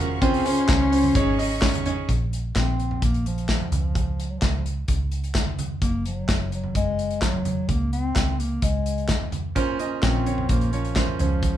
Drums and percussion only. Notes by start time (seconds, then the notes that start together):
0.22 kick, hi-hat pedal, open hi-hat
0.34 open hi-hat
0.45 hi-hat pedal, open hi-hat
0.57 hi-hat pedal
0.68 kick, snare, clap, hi-hat pedal, open hi-hat
0.92 hi-hat pedal, open hi-hat
1.04 floor tom
1.15 kick, hi-hat pedal, open hi-hat
1.39 hi-hat pedal, open hi-hat
1.51 open hi-hat
1.62 kick, snare, clap, hi-hat pedal, open hi-hat
1.74 floor tom, hi-hat pedal
1.86 floor tom, hi-hat pedal, open hi-hat
2.09 kick, closed hi-hat
2.33 closed hi-hat
2.55 kick, snare, clap, closed hi-hat
2.80 closed hi-hat
2.91 floor tom
3.02 kick, closed hi-hat
3.14 closed hi-hat
3.26 closed hi-hat
3.38 closed hi-hat
3.49 kick, snare, clap, closed hi-hat
3.60 floor tom
3.72 closed hi-hat, floor tom
3.95 kick, closed hi-hat
4.20 closed hi-hat
4.42 kick, snare, clap, closed hi-hat
4.66 closed hi-hat
4.88 kick, closed hi-hat
5.12 closed hi-hat
5.24 closed hi-hat
5.35 kick, snare, clap, closed hi-hat
5.46 floor tom
5.59 closed hi-hat, floor tom
5.82 kick, closed hi-hat
6.06 closed hi-hat
6.28 kick, snare, clap, closed hi-hat
6.52 closed hi-hat
6.64 floor tom
6.75 kick, closed hi-hat
6.99 closed hi-hat
7.11 closed hi-hat
7.22 kick, snare, clap, closed hi-hat
7.34 floor tom
7.45 closed hi-hat, floor tom
7.69 kick, closed hi-hat
7.93 closed hi-hat
8.16 kick, snare, clap, closed hi-hat
8.40 closed hi-hat
8.62 kick, closed hi-hat
8.86 closed hi-hat
8.98 closed hi-hat
9.08 kick, snare, clap, closed hi-hat
9.21 floor tom
9.32 closed hi-hat, floor tom
9.56 kick, closed hi-hat
9.79 closed hi-hat
10.02 kick, snare, clap, closed hi-hat
10.26 closed hi-hat
10.38 floor tom
10.49 kick, closed hi-hat
10.61 closed hi-hat
10.73 closed hi-hat
10.85 closed hi-hat
10.96 kick, snare, clap, closed hi-hat
11.07 floor tom
11.19 closed hi-hat, floor tom
11.43 kick, closed hi-hat